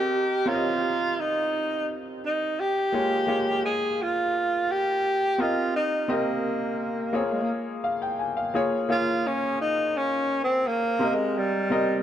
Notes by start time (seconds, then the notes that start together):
Already playing: C4 G4 A#4 D#5
0.46 C4 F4 G4 A#4 C#5
0.54 D#5
1.20 D#4
2.25 D#4
2.60 G4
2.92 G#3 A#3 F4 C#5
3.27 G#3 A#3 F4 C#5
3.65 G#4
4.02 F4
4.71 G4
5.38 C4 F4 G4 A#4 D#5
5.76 D#4
6.08 A#3 C4 G4 A#4 D#5
7.13 A#3 C4 F4 G#4 C#5
7.24 A#3
7.33 G#3
7.42 A#3
7.84 F5
8.02 G5
8.19 G#5
8.37 F5
8.54 A#3 F4 G#4 C#5
8.89 A#3 F4 G#4 C#5
9.27 C#4
9.61 D#4
9.97 C#4
10.44 C4
10.67 A#3
10.99 C4 G4 A#4 D#5
11.14 G#3
11.38 G3
11.70 C4 G4 A#4 D#5